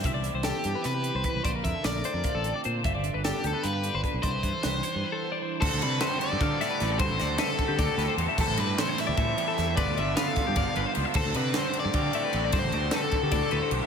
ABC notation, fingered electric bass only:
X:1
M:7/8
L:1/16
Q:1/4=152
K:Ddor
V:1 name="Fingered electric bass" clef=bass
C,,3 C,,2 z G,, z C,3 C,, z C,, | _B,,,2 F,, z B,,,2 z F,, z A,,,2 z _B,,2 | G,,,3 G,,,2 z D,, z G,,3 G,,, z B,,, | C,,2 G,, z C,,2 z G,, z6 |
D,, D,, C,2 z3 G,, D,2 z2 A,,,2 | G,, A,,, D,,2 z3 D, D,, z D,, z E,, z | A,,, A,,, G,,2 z3 D,, A,,2 z2 E,,2 | G,,, D,, G,,,2 z3 G,, G,,, z G,,, z _D,, z |
D,, D,, C,2 z3 G,, D,2 z2 A,,,2 | G,, A,,, D,,2 z3 D, D,, z D,, z B,,, z |]